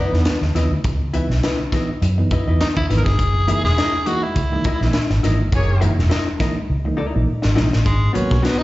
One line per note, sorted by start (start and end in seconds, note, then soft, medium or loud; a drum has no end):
0.00 0.14 C#3 medium
0.00 0.51 B3 medium
0.00 0.17 E4 medium
0.00 0.13 B4 medium
0.00 0.12 D#5 medium
0.12 0.22 E2 medium
0.12 0.27 E3 medium
0.12 0.25 B3 medium
0.12 0.25 D#4 medium
0.12 muted hollow-body jazz guitar stroke soft
0.12 snare soft
0.25 0.33 B3 soft
0.25 0.33 D#4 soft
0.25 snare loud
0.25 closed hi-hat medium
0.42 0.51 D#2 medium
0.42 0.56 C#3 medium
0.42 muted hollow-body jazz guitar stroke medium
0.42 snare soft
0.54 0.67 D#2 medium
0.54 0.72 E3 medium
0.54 0.72 B3 medium
0.54 0.72 D#4 medium
0.54 0.75 E4 medium
0.54 0.72 B4 medium
0.54 0.71 D#5 medium
0.54 snare soft
0.54 closed hi-hat medium
0.71 0.81 D2 medium
0.71 muted hollow-body jazz guitar stroke soft
0.84 1.18 C#2 loud
0.84 1.01 C#3 medium
0.84 kick loud
0.84 closed hi-hat medium
1.01 1.06 B3 soft
1.01 1.06 D#4 soft
1.13 1.31 E3 medium
1.13 1.31 B3 medium
1.13 1.31 D#4 medium
1.13 1.33 E4 medium
1.13 1.33 B4 medium
1.13 1.34 E5 loud
1.13 closed hi-hat medium
1.30 1.39 B1 medium
1.30 snare soft
1.42 1.49 B3 soft
1.42 1.49 D#4 soft
1.42 1.63 E4 medium
1.42 1.60 B4 medium
1.42 1.59 D#5 medium
1.42 snare loud
1.42 closed hi-hat medium
1.59 1.73 C#3 medium
1.59 muted hollow-body jazz guitar stroke soft
1.72 1.89 E3 medium
1.72 1.89 B3 medium
1.72 1.89 D#4 medium
1.72 1.88 E4 medium
1.72 1.89 B4 medium
1.72 1.88 D#5 medium
1.72 kick medium
1.72 snare soft
1.72 closed hi-hat medium
1.89 muted hollow-body jazz guitar stroke soft
2.02 2.23 F#2 medium
2.02 muted hollow-body jazz guitar stroke soft
2.02 closed hi-hat medium
2.17 2.31 E3 medium
2.17 2.32 B3 medium
2.17 2.32 D#4 medium
2.17 muted hollow-body jazz guitar stroke soft
2.30 2.47 C#3 medium
2.30 2.47 E4 medium
2.30 2.47 B4 medium
2.30 2.46 D#5 medium
2.30 kick medium
2.30 closed hi-hat medium
2.47 2.57 E2 medium
2.47 2.61 E3 medium
2.47 2.59 B3 medium
2.47 2.59 D#4 medium
2.47 2.60 E4 medium
2.47 2.60 B4 medium
2.47 2.60 D#5 medium
2.60 2.67 B3 soft
2.60 2.68 D#4 medium
2.60 2.67 D#4 soft
2.60 snare loud
2.60 closed hi-hat medium
2.76 2.86 D#2 medium
2.76 2.90 C#3 medium
2.76 2.86 E4 medium
2.76 muted hollow-body jazz guitar stroke soft
2.76 kick medium
2.89 3.01 G#1 medium
2.89 3.06 E3 medium
2.89 3.06 B3 medium
2.89 3.06 D#4 medium
2.89 3.09 E4 medium
2.89 3.06 B4 medium
2.89 3.05 D#5 medium
2.89 snare soft
2.89 closed hi-hat medium
2.97 3.06 A#4 medium
3.04 3.19 G1 medium
3.04 3.63 G#4 loud
3.04 muted hollow-body jazz guitar stroke soft
3.04 kick medium
3.04 snare soft
3.19 3.52 F#1 loud
3.19 kick loud
3.19 closed hi-hat medium
3.35 3.40 A#3 soft
3.35 3.40 D#4 soft
3.47 3.64 E3 medium
3.47 3.65 G#3 medium
3.47 3.64 A#3 medium
3.47 3.65 D#4 medium
3.47 3.67 E4 medium
3.47 3.67 A#4 medium
3.47 3.68 E5 medium
3.47 closed hi-hat medium
3.64 3.74 E1 medium
3.64 4.08 G#4 loud
3.64 snare soft
3.77 3.84 A#3 soft
3.77 3.84 D#4 soft
3.77 3.96 E4 medium
3.77 3.93 A#4 loud
3.77 3.93 D#5 loud
3.77 snare loud
3.77 closed hi-hat medium
3.94 muted hollow-body jazz guitar stroke soft
4.06 4.23 E3 medium
4.06 4.23 G#3 medium
4.06 4.23 A#3 medium
4.06 4.23 D#4 medium
4.06 4.22 E4 medium
4.06 4.25 F#4 medium
4.06 4.22 A#4 medium
4.06 4.22 D#5 medium
4.06 closed hi-hat medium
4.23 5.23 E4 medium
4.23 muted hollow-body jazz guitar stroke soft
4.36 4.57 C#2 loud
4.36 kick medium
4.36 closed hi-hat medium
4.51 4.65 E3 medium
4.51 4.65 G#3 medium
4.51 4.65 A#3 medium
4.51 4.66 D#4 medium
4.51 muted hollow-body jazz guitar stroke soft
4.64 4.84 E4 medium
4.64 4.81 A#4 medium
4.64 4.80 D#5 medium
4.64 kick medium
4.64 closed hi-hat medium
4.81 4.90 A#1 medium
4.81 4.95 E3 medium
4.81 4.95 G#3 medium
4.81 4.95 A#3 medium
4.81 4.95 D#4 medium
4.81 muted hollow-body jazz guitar stroke soft
4.81 snare soft
4.93 muted hollow-body jazz guitar stroke soft
4.93 snare loud
4.93 closed hi-hat medium
5.10 5.20 G#1 medium
5.10 muted hollow-body jazz guitar stroke medium
5.10 snare soft
5.23 5.40 G#1 medium
5.23 5.40 E3 medium
5.23 5.40 G#3 medium
5.23 5.39 A#3 medium
5.23 5.39 D#4 medium
5.23 5.42 E4 medium
5.23 5.38 A#4 medium
5.23 5.38 D#5 medium
5.23 snare soft
5.23 closed hi-hat medium
5.39 5.49 G1 medium
5.39 5.45 A#3 soft
5.39 5.45 D#4 soft
5.39 muted hollow-body jazz guitar stroke soft
5.52 5.86 F#1 loud
5.52 5.92 A#3 medium
5.52 5.92 G#4 medium
5.52 5.92 C#5 loud
5.52 kick loud
5.52 closed hi-hat medium
5.70 5.74 A#3 soft
5.70 5.74 D#4 soft
5.81 5.99 E3 medium
5.81 5.99 G#3 medium
5.81 5.99 A#3 medium
5.81 5.99 D#4 medium
5.81 6.00 E4 medium
5.81 6.01 A#4 medium
5.81 6.01 E5 medium
5.81 closed hi-hat medium
5.99 6.08 E1 loud
5.99 snare soft
6.09 6.17 A#3 soft
6.09 6.17 D#4 soft
6.09 6.29 E4 medium
6.09 6.26 A#4 loud
6.09 6.25 D#5 loud
6.09 snare loud
6.09 closed hi-hat medium
6.26 muted hollow-body jazz guitar stroke medium
6.40 6.57 E3 medium
6.40 6.57 G#3 medium
6.40 6.57 A#3 medium
6.40 6.57 D#4 medium
6.40 6.56 E4 medium
6.40 6.55 A#4 medium
6.40 6.55 D#5 medium
6.40 kick medium
6.40 snare soft
6.40 closed hi-hat medium
6.56 muted hollow-body jazz guitar stroke soft
6.70 6.91 C#2 loud
6.84 6.98 E3 medium
6.84 6.99 G#3 medium
6.84 6.99 A#3 medium
6.84 6.99 D#4 medium
6.84 muted hollow-body jazz guitar stroke soft
6.97 7.19 E4 medium
6.97 7.13 A#4 medium
6.97 7.12 D#5 loud
7.13 7.25 A#1 medium
7.13 7.28 E3 medium
7.13 7.28 G#3 medium
7.13 7.29 A#3 medium
7.13 7.29 D#4 medium
7.13 muted hollow-body jazz guitar stroke soft
7.42 7.54 G#1 medium
7.42 muted hollow-body jazz guitar stroke medium
7.42 snare medium
7.55 7.69 A#1 loud
7.55 7.73 E3 medium
7.55 7.73 G#3 medium
7.55 7.72 A#3 medium
7.55 7.72 D#4 medium
7.55 7.75 E4 medium
7.55 7.71 A#4 medium
7.55 7.70 D#5 medium
7.55 snare loud
7.72 7.83 A1 medium
7.72 7.78 A#3 soft
7.72 7.78 D#4 soft
7.72 muted hollow-body jazz guitar stroke soft
7.72 snare medium
7.85 8.07 G#1 medium
7.85 8.03 G#2 medium
7.85 8.13 G#3 medium
7.85 kick loud
7.85 closed hi-hat medium
8.13 8.32 B2 medium
8.13 8.30 F#3 medium
8.13 8.30 A#3 loud
8.13 8.33 B3 medium
8.13 8.45 C#4 medium
8.13 8.34 F#4 medium
8.13 8.34 B4 medium
8.13 closed hi-hat medium
8.31 8.41 B1 medium
8.31 8.37 F#3 soft
8.31 8.37 A#3 soft
8.31 kick medium
8.31 snare soft
8.42 8.51 F#3 soft
8.42 8.51 A#3 soft
8.42 8.62 B3 medium
8.42 8.60 B3 medium
8.42 8.58 F#4 medium
8.42 8.57 A#4 medium
8.42 snare loud
8.42 closed hi-hat medium
8.58 8.63 D#4 loud
8.58 muted hollow-body jazz guitar stroke soft